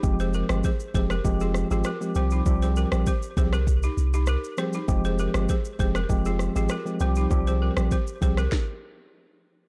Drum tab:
SH |xxxxxxxxxxxxxxxx|xxxxxxxxxxxxxxxx|xxxxxxxxxxxxxxxx|xx-xxxxx--------|
SD |---r---r--r-r---|---r---r----r-r-|---r---r--r-r---|---r---ro-------|
BD |o---o-o-o-------|o---o-o-o-------|o---o-o-o-------|o---o-o-o-------|